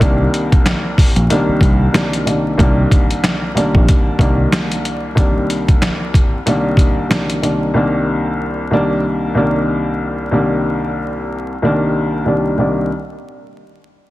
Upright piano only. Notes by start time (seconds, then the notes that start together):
0.00 C2 D#3 G3 A#3 D4
1.30 C2 D#3 G3 A#3 D4
1.93 C2 D#3 G3 A#3 D4
2.25 C2 D#3 G3 A#3 D4
2.58 C2 D#3 G3 A#3 D4
3.55 C2 D#3 G3 A#3 D4
4.19 C2 D#3 G3 A#3 D4
5.15 C2 D#3 G3 A#3 D4
6.46 C2 D#3 G3 A#3 D4
7.09 C2 D#3 G3 A#3 D4
7.42 C2 D#3 G3 A#3 D4
7.74 C2 D#3 G3 A#3 D4
8.71 C2 D#3 G3 A#3 D4
9.35 C2 D#3 G3 A#3 D4
10.31 C2 D#3 G3 A#3 D4
11.62 C2 D#3 G3 A#3 D4
12.25 C2 D#3 G3 A#3 D4
12.57 C2 D#3 G3 A#3 D4